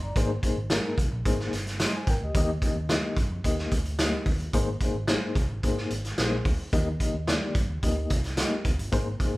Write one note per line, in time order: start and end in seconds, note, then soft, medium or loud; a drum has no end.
0.02 0.13 G1 medium
0.02 0.29 D5 medium
0.02 0.28 A#5 medium
0.16 0.37 G#1 loud
0.16 0.95 G#2 medium
0.16 0.30 A#3 loud
0.16 0.30 D#4 loud
0.16 0.30 G#4 loud
0.16 0.30 C5 loud
0.16 kick loud
0.16 closed hi-hat medium
0.43 0.58 A#3 medium
0.43 0.58 D#4 medium
0.43 0.58 G#4 medium
0.43 0.58 C5 medium
0.43 kick medium
0.43 closed hi-hat medium
0.57 0.78 G#1 loud
0.70 0.99 A#3 medium
0.70 0.99 D#4 medium
0.70 0.99 G#4 medium
0.70 0.99 A#4 loud
0.70 snare loud
0.70 closed hi-hat medium
0.98 1.08 C2 loud
0.98 kick loud
0.98 closed hi-hat medium
1.11 1.22 A#1 loud
1.25 1.46 G#1 loud
1.25 1.53 A#3 medium
1.25 1.53 D#4 medium
1.25 1.53 G#4 medium
1.25 1.53 C5 medium
1.25 kick loud
1.25 closed hi-hat medium
1.40 snare soft
1.53 1.85 G1 medium
1.53 snare soft
1.53 closed hi-hat medium
1.67 snare soft
1.67 closed hi-hat medium
1.79 1.94 D#5 medium
1.79 1.94 C6 medium
1.79 snare loud
1.79 closed hi-hat loud
1.96 2.08 C5 medium
1.96 2.08 G#5 medium
2.07 2.18 G#1 medium
2.07 2.22 A#4 medium
2.07 2.21 G5 medium
2.07 kick loud
2.07 closed hi-hat medium
2.21 2.32 D2 medium
2.21 2.36 G4 soft
2.21 2.36 D#5 medium
2.35 2.56 D#2 loud
2.35 3.14 D#3 medium
2.35 2.50 A#3 loud
2.35 2.50 D#4 loud
2.35 2.50 G4 loud
2.35 2.50 D#5 loud
2.35 kick loud
2.35 closed hi-hat loud
2.62 2.77 A#3 medium
2.62 2.77 D#4 medium
2.62 2.77 G4 medium
2.62 2.77 D#5 medium
2.62 kick medium
2.62 closed hi-hat medium
2.76 2.97 D#2 loud
2.89 3.18 A#3 medium
2.89 3.18 D#4 medium
2.89 3.18 G4 medium
2.89 3.18 D#5 medium
2.89 snare loud
2.89 closed hi-hat medium
3.16 3.27 G2 loud
3.16 kick loud
3.16 closed hi-hat medium
3.31 3.41 F2 medium
3.44 3.65 D#2 loud
3.44 3.72 A#3 medium
3.44 3.73 D#4 medium
3.44 3.73 G4 medium
3.44 3.73 D#5 medium
3.44 kick medium
3.44 closed hi-hat medium
3.58 snare soft
3.71 4.14 D2 medium
3.71 kick medium
3.71 closed hi-hat medium
3.85 closed hi-hat medium
3.98 4.27 A#3 medium
3.98 4.27 D#4 medium
3.98 4.27 G4 medium
3.98 4.27 D#5 loud
3.98 snare loud
3.98 closed hi-hat loud
4.25 4.47 D#2 loud
4.25 kick loud
4.25 open hi-hat medium
4.40 closed hi-hat medium
4.53 4.75 G#1 loud
4.53 5.33 G#2 medium
4.53 4.68 A#3 loud
4.53 4.68 D#4 loud
4.53 4.68 G#4 loud
4.53 4.68 C5 loud
4.53 kick loud
4.53 closed hi-hat medium
4.81 4.96 A#3 medium
4.81 4.96 D#4 medium
4.81 4.96 G#4 medium
4.81 4.96 C5 medium
4.81 kick medium
4.81 closed hi-hat medium
4.94 5.15 G#1 medium
5.08 5.37 A#3 medium
5.08 5.37 D#4 medium
5.08 5.37 G#4 medium
5.08 5.37 C5 medium
5.08 snare loud
5.08 closed hi-hat medium
5.35 5.46 C2 loud
5.35 kick loud
5.35 closed hi-hat medium
5.49 5.60 G#1 loud
5.63 5.84 G#2 loud
5.63 5.91 A#3 medium
5.63 5.92 D#4 medium
5.63 5.92 G#4 medium
5.63 5.92 C5 medium
5.63 kick medium
5.63 closed hi-hat medium
5.77 snare soft
5.90 6.12 G#1 medium
5.90 closed hi-hat medium
6.05 snare soft
6.05 closed hi-hat medium
6.18 6.39 A#1 loud
6.18 6.46 A#3 medium
6.18 6.46 D#4 medium
6.18 6.46 G#4 medium
6.18 6.46 C5 loud
6.18 snare loud
6.18 closed hi-hat medium
6.45 6.56 D2 medium
6.45 kick loud
6.45 open hi-hat medium
6.73 6.94 D#2 loud
6.73 7.51 D#3 medium
6.73 6.87 A#3 loud
6.73 6.87 D#4 loud
6.73 6.87 G4 loud
6.73 6.87 D#5 loud
6.73 kick loud
6.73 closed hi-hat medium
7.00 7.15 A#3 medium
7.00 7.15 D#4 medium
7.00 7.15 G4 medium
7.00 7.15 D#5 medium
7.00 kick medium
7.00 closed hi-hat medium
7.14 7.35 D#2 loud
7.27 7.56 A#3 medium
7.27 7.56 D#4 medium
7.27 7.56 G4 medium
7.27 7.56 D5 medium
7.27 snare loud
7.27 closed hi-hat medium
7.55 7.66 G2 loud
7.55 kick loud
7.55 closed hi-hat medium
7.69 7.80 D#2 medium
7.83 8.04 D2 medium
7.83 8.10 A#3 medium
7.83 8.10 D#4 medium
7.83 8.11 G4 medium
7.83 8.11 D#5 medium
7.83 kick loud
7.83 closed hi-hat medium
8.10 8.42 C2 medium
8.10 kick loud
8.10 closed hi-hat medium
8.24 snare soft
8.24 closed hi-hat medium
8.37 8.65 A#3 medium
8.37 8.65 D#4 medium
8.37 8.65 G4 medium
8.37 8.66 D#5 medium
8.37 snare loud
8.37 closed hi-hat loud
8.64 8.75 D2 loud
8.64 kick loud
8.64 closed hi-hat medium
8.79 8.90 G1 loud
8.79 closed hi-hat medium
8.92 9.14 G#1 loud
8.92 9.37 G#2 medium
8.92 9.06 A#3 loud
8.92 9.06 D#4 loud
8.92 9.07 G#4 loud
8.92 9.07 C5 loud
8.92 kick loud
8.92 closed hi-hat medium
9.20 9.34 A#3 medium
9.20 9.34 D#4 medium
9.20 9.34 G#4 medium
9.20 9.34 C5 medium
9.20 kick loud
9.20 closed hi-hat medium
9.33 9.37 G#1 loud